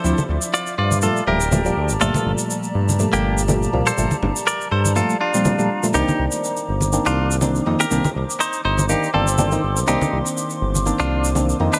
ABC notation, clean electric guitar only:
X:1
M:4/4
L:1/16
Q:"Swing 16ths" 1/4=122
K:Cdor
V:1 name="Clean electric guitar"
[Ac] z3 [Fd]2 [Fd]2 [FA]2 [GB]4- [GB] z | [FA]2 z6 z [B,G]2 z4 [Ac]- | [Ac] z3 [Bd]2 [Ac]2 [FA]2 [DF]4- [DF] z | [EG]2 z6 z [DF]2 z4 [GB]- |
[GB] z3 [Ec]2 [Ec]2 [EG]2 [CA]4- [CA] z | [EG]2 z6 z [DF]2 z4 [D=B] |]